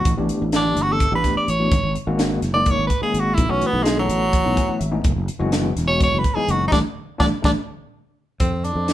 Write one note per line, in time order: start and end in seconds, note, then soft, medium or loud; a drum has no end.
0.00 0.14 F#4 loud
0.05 0.17 A1 loud
0.05 kick loud
0.05 closed hi-hat medium
0.17 0.29 A1 medium
0.17 0.50 E3 medium
0.17 0.50 A3 medium
0.17 0.50 B3 medium
0.17 0.50 D4 medium
0.17 0.50 G4 medium
0.29 closed hi-hat medium
0.42 0.75 A1 medium
0.52 0.84 D4 loud
0.52 snare loud
0.52 closed hi-hat medium
0.64 0.97 E3 medium
0.64 0.97 A3 medium
0.64 0.97 B3 medium
0.64 0.97 D4 medium
0.64 0.97 G4 medium
0.76 1.10 G1 medium
0.76 closed hi-hat medium
0.82 0.94 F#4 medium
0.92 1.13 A4 medium
1.00 kick medium
1.00 closed hi-hat medium
1.11 1.23 A1 medium
1.11 1.44 E3 medium
1.11 1.44 A3 medium
1.11 1.44 B3 medium
1.11 1.44 D4 medium
1.11 1.44 G4 medium
1.11 1.37 B4 loud
1.24 kick medium
1.24 snare soft
1.24 closed hi-hat medium
1.36 1.51 D5 medium
1.36 muted fretless electric bass stroke soft
1.48 1.70 A1 medium
1.48 1.95 C#5 medium
1.48 closed hi-hat medium
1.60 1.72 E3 medium
1.60 1.72 A3 medium
1.60 1.72 B3 medium
1.60 1.72 D4 medium
1.60 1.72 F#4 medium
1.72 1.83 G#1 loud
1.72 kick loud
1.72 closed hi-hat medium
1.83 1.95 G#1 medium
1.95 closed hi-hat medium
2.07 2.41 G#1 loud
2.07 2.40 D#3 medium
2.07 2.40 G#3 medium
2.07 2.39 A#3 medium
2.07 2.40 C#4 medium
2.07 2.40 F#4 loud
2.19 snare loud
2.19 closed hi-hat medium
2.42 2.77 F#1 medium
2.42 snare soft
2.42 closed hi-hat medium
2.53 2.87 D#3 medium
2.53 2.87 G#3 medium
2.53 2.87 A#3 medium
2.53 2.87 C#4 medium
2.53 2.87 D#4 medium
2.53 2.72 D5 loud
2.66 kick loud
2.66 closed hi-hat medium
2.70 2.84 C#5 medium
2.78 2.89 G#1 medium
2.87 3.00 B4 medium
2.87 kick medium
2.87 closed hi-hat medium
3.01 3.34 D#3 medium
3.01 3.34 G#3 medium
3.01 3.35 A#3 medium
3.01 3.35 C#4 medium
3.01 3.35 G#4 medium
3.01 3.21 G#4 medium
3.01 muted fretless electric bass stroke soft
3.14 3.37 G#1 medium
3.14 closed hi-hat medium
3.19 3.36 F#4 medium
3.34 3.49 B1 loud
3.34 3.52 E4 medium
3.34 kick loud
3.34 closed hi-hat medium
3.49 3.61 B1 medium
3.49 3.82 E3 medium
3.49 3.82 A3 medium
3.49 3.82 B3 medium
3.49 3.82 C#4 medium
3.49 3.68 C#4 medium
3.49 3.82 F#4 loud
3.61 closed hi-hat medium
3.66 3.84 B3 loud
3.73 4.08 B1 medium
3.83 3.96 G#3 medium
3.83 snare loud
3.83 closed hi-hat medium
3.97 4.30 E3 medium
3.97 4.89 F#3 loud
3.97 4.30 A3 medium
3.97 4.30 B3 medium
3.97 4.30 C#4 medium
3.97 4.30 A4 medium
4.09 4.43 A1 medium
4.09 closed hi-hat medium
4.33 kick loud
4.33 closed hi-hat medium
4.44 4.56 B1 medium
4.44 4.77 E3 medium
4.44 4.77 A3 medium
4.44 4.77 B3 medium
4.44 4.77 C#4 medium
4.44 4.77 E4 medium
4.57 4.68 G#5 medium
4.57 kick medium
4.57 snare soft
4.57 closed hi-hat medium
4.68 4.80 F#5 medium
4.68 muted fretless electric bass stroke soft
4.79 5.04 G#1 medium
4.79 5.03 E5 medium
4.79 closed hi-hat medium
4.91 5.04 E3 medium
4.91 5.04 A3 medium
4.91 5.04 B3 medium
4.91 5.04 C#4 medium
4.91 5.04 D#4 medium
5.04 5.16 F#1 loud
5.04 kick loud
5.04 closed hi-hat medium
5.16 5.28 F#1 loud
5.28 closed hi-hat medium
5.39 5.74 F#1 loud
5.39 5.73 E3 loud
5.39 5.72 G#3 medium
5.39 5.73 B3 medium
5.39 5.73 C#4 medium
5.39 5.73 F#4 loud
5.52 snare loud
5.52 closed hi-hat medium
5.76 6.10 E1 medium
5.76 snare soft
5.76 closed hi-hat medium
5.87 6.21 E3 medium
5.87 6.21 G#3 medium
5.87 6.21 B3 medium
5.87 6.21 C#4 medium
5.87 6.21 F#4 medium
5.87 6.02 C#5 loud
6.01 6.20 C#5 loud
6.01 kick loud
6.01 closed hi-hat medium
6.13 6.24 F#1 medium
6.19 6.36 B4 medium
6.24 kick medium
6.24 closed hi-hat medium
6.35 6.69 E3 medium
6.35 6.69 G#3 medium
6.35 6.69 B3 medium
6.35 6.69 C#4 medium
6.35 6.69 D#4 medium
6.35 6.52 G#4 loud
6.35 muted fretless electric bass stroke soft
6.48 6.71 F#1 medium
6.48 6.65 F#4 medium
6.48 closed hi-hat medium
6.68 6.79 G3 loud
6.68 6.80 A3 medium
6.68 6.79 D4 loud
6.68 6.72 D#4 medium
6.72 6.81 A1 loud
6.72 6.78 D4 medium
6.72 kick loud
6.72 snare loud
7.18 7.29 A1 loud
7.18 7.27 G3 medium
7.18 7.27 A3 loud
7.18 7.27 D4 loud
7.18 7.26 D4 medium
7.18 kick medium
7.18 snare medium
7.42 7.53 A1 medium
7.42 7.51 G3 medium
7.42 7.51 A3 medium
7.42 7.51 D4 medium
7.42 kick loud
7.42 snare medium
8.40 8.74 F2 medium
8.40 8.66 C4 medium
8.40 kick loud
8.40 closed hi-hat medium
8.64 8.93 D4 medium
8.64 closed hi-hat medium
8.75 8.93 F2 medium
8.88 snare loud
8.88 closed hi-hat medium